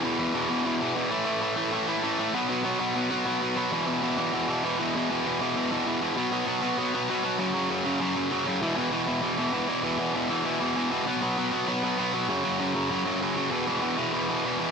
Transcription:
\new Staff \with { instrumentName = "Distorted electric guitar" } { \clef bass \time 4/4 \key b \mixolydian \tempo 4 = 196 <e, b, e>8 <e, b, e>8 <e, b, e>8 <e, b, e>8 <e, b, e>8 <e, b, e>8 <e, b, e>8 <a, e a>8 | <a, e a>8 <a, e a>8 <a, e a>8 <a, e a>8 <a, e a>8 <a, e a>8 <a, e a>8 <b, fis b>8 | <b, fis b>8 <b, fis b>8 <b, fis b>8 <b, fis b>8 <b, fis b>8 <b, fis b>8 <b, fis b>8 <b, fis b>8 | <e, b, e>8 <e, b, e>8 <e, b, e>8 <e, b, e>8 <e, b, e>8 <e, b, e>8 <e, b, e>8 <e, b, e>8 |
<e, b, e>8 <e, b, e>8 <e, b, e>8 <e, b, e>8 <e, b, e>8 <e, b, e>8 <e, b, e>8 <e, b, e>8 | <b, fis b>8 <b, fis b>8 <b, fis b>8 <b, fis b>8 <b, fis b>8 <b, fis b>8 <b, fis b>8 <b, fis b>8 | <fis, cis fis>8 <fis, cis fis>8 <fis, cis fis>8 <fis, cis fis>8 <fis, cis fis>8 <fis, cis fis>8 <fis, cis fis>8 <fis, cis fis>8 | <e, b, e>8 <e, b, e>8 <e, b, e>8 <e, b, e>8 <e, b, e>8 <e, b, e>8 <e, b, e>8 <e, b, e>8 |
<e, b, e>8 <e, b, e>8 <e, b, e>8 <e, b, e>8 <e, b, e>8 <e, b, e>8 <e, b, e>8 <e, b, e>8 | <b, fis b>8 <b, fis b>8 <b, fis b>8 <b, fis b>8 <b, fis b>8 <b, fis b>8 <b, fis b>8 <b, fis b>8 | <fis, cis fis>8 <fis, cis fis>8 <fis, cis fis>8 <fis, cis fis>8 <fis, cis fis>8 <fis, cis fis>8 <fis, cis fis>8 <fis, cis fis>8 | <e, b, e>8 <e, b, e>8 <e, b, e>8 <e, b, e>8 <e, b, e>8 <e, b, e>8 <e, b, e>8 <e, b, e>8 | }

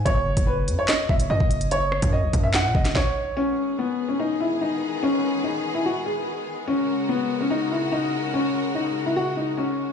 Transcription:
<<
  \new Staff \with { instrumentName = "Grand piano" } { \time 4/4 \key gis \minor \tempo 4 = 145 cis''4 b'8. cis''16 dis''8 e''8 dis''4 | cis''4 dis''8. e''16 fis''8 dis''8 cis''4 | cis'4 b8. cis'16 dis'8 e'8 dis'4 | cis'4 dis'8. e'16 fis'8 gis'4. |
cis'4 b8. cis'16 dis'8 e'8 dis'4 | cis'4 dis'8. e'16 fis'8 dis'8 cis'4 | }
  \new Staff \with { instrumentName = "String section" } { \time 4/4 \key gis \minor << { r1 | r1 | <dis b gis'>1~ | <dis b gis'>1 |
<cis fis' ais'>1~ | <cis fis' ais'>1 | } \\ { r1 | r1 | gis1~ | gis1~ |
gis1~ | gis1 | } >> }
  \new Staff \with { instrumentName = "808-style bass" } { \clef bass \time 4/4 \key gis \minor fis,,8. fis,,8. fis,16 r8. fis,,8 fis,16 fis,,8.~ | fis,,8. fis,8 ais,,16 fis,8. ais,16 fis,,8 r4 | r1 | r1 |
r1 | r1 | }
  \new DrumStaff \with { instrumentName = "Drums" } \drummode { \time 4/4 <hh bd>8. <hh bd>16 r8 hh8 <hc hh sn>8 bd16 hh16 r16 bd16 hh16 hh16 | hh8 ss16 <hh bd>16 r8 <hh bd>8 <hc hh sn>8 bd16 <hh sn>16 <bd sn>4 | r4 r4 r4 r4 | r4 r4 r4 r4 |
r4 r4 r4 r4 | r4 r4 r4 r4 | }
>>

